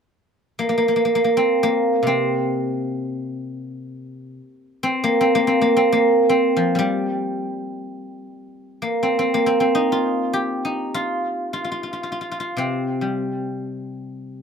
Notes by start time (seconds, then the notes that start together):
0.59 A#3
0.69 A#3
0.78 A#3
0.88 A#3
0.96 A#3
1.05 A#3
1.15 A#3
1.24 A#3
1.37 C4
1.63 A#3
2.03 C3
2.07 C4
4.83 C4
5.04 A#3
5.21 C4
5.35 A#3
5.47 C4
5.61 A#3
5.77 C4
5.92 A#3
6.29 C4
6.57 F3
6.75 G3
8.82 A#3
9.03 C4
9.19 C4
9.34 A#3
9.46 C4
9.60 C4
9.75 D#4
9.92 F4
10.33 G4
10.65 D#4
10.94 F4
11.53 F4
11.64 F4
11.72 F4
11.83 F4
11.93 F4
12.03 F4
12.12 F4
12.21 F4
12.31 F4
12.40 F4
12.57 C3 C4
13.01 G3